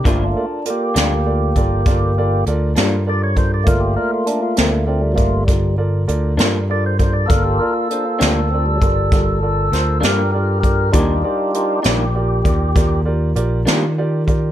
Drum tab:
HH |x-xx-xx-xx-x|x-xx-xx-xx-x|x-xx-xx-xx-x|x-xx-xx-xx-x|
SD |---o-----o--|---o-----o--|---o----oo--|---o-----o--|
BD |o----oo----o|o----oo----o|o----oo----o|o----oo----o|